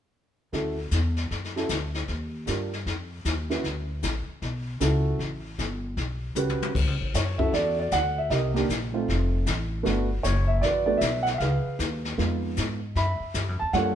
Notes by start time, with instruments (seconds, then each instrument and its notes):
0.52 upright bass D2, grand piano C#4 E4 F#4 A4, brush sweep, kick, snare
0.91 upright bass E2, kick, snare, hi-hat pedal
1.16 snare
1.31 upright bass F#2, brush sweep, kick, snare
1.44 snare
1.56 grand piano C#4 E4 F#4 A4, snare
1.69 upright bass D2, kick, snare, hi-hat pedal
1.94 snare
2.08 upright bass D#2, brush sweep, kick, snare
2.46 upright bass G2, grand piano D4 F4 G4 A#4, kick, snare, hi-hat pedal
2.73 snare
2.86 upright bass F2, brush sweep, kick, snare
3.25 upright bass D#2, kick, snare, hi-hat pedal
3.50 grand piano C#4 E4 F#4 B4, snare
3.64 upright bass D2, brush sweep, kick, snare
4.03 upright bass A1, kick, snare, hi-hat pedal
4.28 muted upright bass stroke
4.42 upright bass B1, brush sweep, kick, snare
4.80 upright bass C#2, grand piano C#4 E4 F#4 A4, kick, snare, hi-hat pedal
5.19 upright bass A1, brush sweep, kick, snare
5.58 upright bass G1, kick, snare, hi-hat pedal
5.97 upright bass B1, brush sweep, kick, snare
6.35 upright bass C#2, grand piano C#4 F#4 G4 B4, hi-hat pedal, high tom
6.49 high tom
6.60 muted upright bass stroke, high tom
6.75 upright bass D2, brush sweep, kick, snare, crash
6.87 upright bass C#2
7.01 upright bass A1
7.14 upright bass F#2, grand piano C#5, kick, snare, hi-hat pedal
7.38 grand piano C#4 E4 F#4 A4 E5, kick
7.53 upright bass E2, grand piano F#4 A4 D5, brush sweep, kick, snare
7.80 grand piano D5
7.91 upright bass D2, grand piano F#5, kick, snare, hi-hat pedal
8.18 grand piano E5
8.30 upright bass C2, grand piano G4 A#4 D#5, brush sweep, kick, snare
8.54 grand piano A#3 D4 D#4 G4, snare
8.69 upright bass A#1, kick, snare, hi-hat pedal
8.93 grand piano A3 C4 D#4 F4
9.08 upright bass F1, brush sweep, kick, snare
9.46 upright bass A1, kick, snare, hi-hat pedal
9.83 upright bass G1, grand piano A3 B3 D4 F#4, brush sweep, kick, snare
10.23 upright bass F#1, grand piano C#5, kick, snare, hi-hat pedal
10.47 grand piano E5
10.61 upright bass A1, grand piano B4 D5, brush sweep, kick, snare
10.66 grand piano F#4
10.86 grand piano A3 B3 D4 F#4 D5
10.98 upright bass B1, grand piano E5, kick, snare, hi-hat pedal
11.23 grand piano F#5, snare
11.34 grand piano E5
11.38 upright bass C#2, grand piano G#4 B4 F5, brush sweep, kick, snare
11.65 muted upright bass stroke
11.79 upright bass D#2, kick, snare, hi-hat pedal
12.05 snare
12.18 upright bass F2, grand piano G#3 B3 D#4 F4, brush sweep, kick, snare
12.57 upright bass G#2, kick, snare, hi-hat pedal
12.95 upright bass F#2, grand piano E5 B5, brush sweep, kick, snare
13.20 muted upright bass stroke
13.34 upright bass G2, kick, snare, hi-hat pedal
13.49 upright bass F#2
13.59 upright bass E2, grand piano A5
13.73 upright bass F#2, grand piano G3 A#3 D4 F4 A4 C#5 F#5, brush sweep, kick, snare